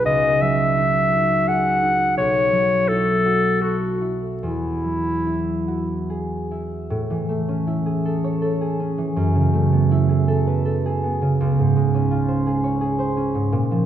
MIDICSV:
0, 0, Header, 1, 3, 480
1, 0, Start_track
1, 0, Tempo, 707547
1, 39, Time_signature, 3, 2, 24, 8
1, 1959, Tempo, 744417
1, 2439, Tempo, 821918
1, 4359, Tempo, 768246
1, 4839, Tempo, 740741
1, 7239, Tempo, 710900
1, 8904, End_track
2, 0, Start_track
2, 0, Title_t, "Clarinet"
2, 0, Program_c, 0, 71
2, 36, Note_on_c, 0, 75, 56
2, 283, Note_on_c, 0, 76, 56
2, 293, Note_off_c, 0, 75, 0
2, 1004, Note_on_c, 0, 78, 53
2, 1014, Note_off_c, 0, 76, 0
2, 1472, Note_off_c, 0, 78, 0
2, 1476, Note_on_c, 0, 73, 51
2, 1955, Note_on_c, 0, 69, 54
2, 1965, Note_off_c, 0, 73, 0
2, 2428, Note_on_c, 0, 66, 43
2, 2438, Note_off_c, 0, 69, 0
2, 2732, Note_off_c, 0, 66, 0
2, 2904, Note_on_c, 0, 64, 40
2, 3855, Note_off_c, 0, 64, 0
2, 8904, End_track
3, 0, Start_track
3, 0, Title_t, "Harp"
3, 0, Program_c, 1, 46
3, 0, Note_on_c, 1, 54, 31
3, 0, Note_on_c, 1, 63, 32
3, 0, Note_on_c, 1, 66, 37
3, 0, Note_on_c, 1, 68, 33
3, 33, Note_on_c, 1, 37, 37
3, 274, Note_off_c, 1, 54, 0
3, 282, Note_on_c, 1, 54, 32
3, 514, Note_off_c, 1, 63, 0
3, 522, Note_on_c, 1, 63, 39
3, 752, Note_off_c, 1, 66, 0
3, 761, Note_on_c, 1, 66, 36
3, 994, Note_off_c, 1, 68, 0
3, 1002, Note_on_c, 1, 68, 32
3, 1229, Note_off_c, 1, 63, 0
3, 1237, Note_on_c, 1, 63, 33
3, 1471, Note_on_c, 1, 35, 36
3, 1490, Note_off_c, 1, 37, 0
3, 1492, Note_off_c, 1, 63, 0
3, 1492, Note_off_c, 1, 68, 0
3, 1703, Note_off_c, 1, 54, 0
3, 1711, Note_on_c, 1, 54, 30
3, 1955, Note_on_c, 1, 64, 32
3, 2191, Note_off_c, 1, 66, 0
3, 2199, Note_on_c, 1, 66, 32
3, 2437, Note_on_c, 1, 69, 26
3, 2655, Note_off_c, 1, 64, 0
3, 2662, Note_on_c, 1, 64, 26
3, 2904, Note_on_c, 1, 40, 31
3, 2924, Note_off_c, 1, 35, 0
3, 2925, Note_off_c, 1, 69, 0
3, 3137, Note_off_c, 1, 54, 0
3, 3144, Note_on_c, 1, 54, 23
3, 3385, Note_off_c, 1, 64, 0
3, 3392, Note_on_c, 1, 64, 29
3, 3627, Note_off_c, 1, 66, 0
3, 3634, Note_on_c, 1, 66, 26
3, 3879, Note_on_c, 1, 68, 26
3, 4114, Note_off_c, 1, 64, 0
3, 4121, Note_on_c, 1, 64, 24
3, 4349, Note_on_c, 1, 45, 39
3, 4373, Note_off_c, 1, 54, 0
3, 4374, Note_off_c, 1, 66, 0
3, 4376, Note_off_c, 1, 40, 0
3, 4473, Note_on_c, 1, 52, 31
3, 4590, Note_on_c, 1, 57, 33
3, 4712, Note_on_c, 1, 61, 35
3, 4821, Note_off_c, 1, 64, 0
3, 4829, Note_on_c, 1, 64, 38
3, 4942, Note_off_c, 1, 68, 0
3, 4950, Note_on_c, 1, 68, 33
3, 5076, Note_on_c, 1, 69, 36
3, 5197, Note_on_c, 1, 73, 34
3, 5304, Note_off_c, 1, 69, 0
3, 5311, Note_on_c, 1, 69, 35
3, 5430, Note_off_c, 1, 68, 0
3, 5438, Note_on_c, 1, 68, 38
3, 5548, Note_off_c, 1, 61, 0
3, 5556, Note_on_c, 1, 61, 34
3, 5669, Note_off_c, 1, 52, 0
3, 5676, Note_on_c, 1, 52, 36
3, 5795, Note_on_c, 1, 42, 44
3, 5806, Note_off_c, 1, 45, 0
3, 5813, Note_off_c, 1, 52, 0
3, 5915, Note_on_c, 1, 49, 36
3, 6027, Note_off_c, 1, 57, 0
3, 6035, Note_on_c, 1, 57, 34
3, 6157, Note_on_c, 1, 59, 34
3, 6273, Note_off_c, 1, 64, 0
3, 6281, Note_on_c, 1, 64, 45
3, 6387, Note_off_c, 1, 68, 0
3, 6394, Note_on_c, 1, 68, 36
3, 6509, Note_off_c, 1, 69, 0
3, 6517, Note_on_c, 1, 69, 39
3, 6641, Note_on_c, 1, 71, 35
3, 6753, Note_off_c, 1, 69, 0
3, 6761, Note_on_c, 1, 69, 36
3, 6884, Note_off_c, 1, 68, 0
3, 6892, Note_on_c, 1, 68, 42
3, 7000, Note_off_c, 1, 59, 0
3, 7008, Note_on_c, 1, 59, 35
3, 7118, Note_off_c, 1, 49, 0
3, 7125, Note_on_c, 1, 49, 37
3, 7248, Note_on_c, 1, 37, 46
3, 7257, Note_off_c, 1, 42, 0
3, 7258, Note_off_c, 1, 57, 0
3, 7260, Note_off_c, 1, 49, 0
3, 7261, Note_off_c, 1, 69, 0
3, 7262, Note_off_c, 1, 59, 0
3, 7263, Note_off_c, 1, 64, 0
3, 7263, Note_off_c, 1, 71, 0
3, 7373, Note_on_c, 1, 44, 37
3, 7491, Note_on_c, 1, 56, 39
3, 7605, Note_off_c, 1, 61, 0
3, 7613, Note_on_c, 1, 61, 42
3, 7724, Note_on_c, 1, 65, 45
3, 7745, Note_off_c, 1, 73, 0
3, 7841, Note_on_c, 1, 72, 41
3, 7956, Note_off_c, 1, 68, 0
3, 7964, Note_on_c, 1, 68, 43
3, 8080, Note_on_c, 1, 73, 39
3, 8188, Note_off_c, 1, 68, 0
3, 8196, Note_on_c, 1, 68, 42
3, 8308, Note_off_c, 1, 72, 0
3, 8316, Note_on_c, 1, 72, 47
3, 8430, Note_off_c, 1, 61, 0
3, 8438, Note_on_c, 1, 61, 41
3, 8551, Note_off_c, 1, 44, 0
3, 8559, Note_on_c, 1, 44, 39
3, 8678, Note_on_c, 1, 46, 50
3, 8697, Note_off_c, 1, 44, 0
3, 8703, Note_off_c, 1, 37, 0
3, 8806, Note_on_c, 1, 53, 39
3, 8904, Note_off_c, 1, 46, 0
3, 8904, Note_off_c, 1, 53, 0
3, 8904, Note_off_c, 1, 56, 0
3, 8904, Note_off_c, 1, 61, 0
3, 8904, Note_off_c, 1, 65, 0
3, 8904, Note_off_c, 1, 68, 0
3, 8904, Note_off_c, 1, 72, 0
3, 8904, Note_off_c, 1, 73, 0
3, 8904, End_track
0, 0, End_of_file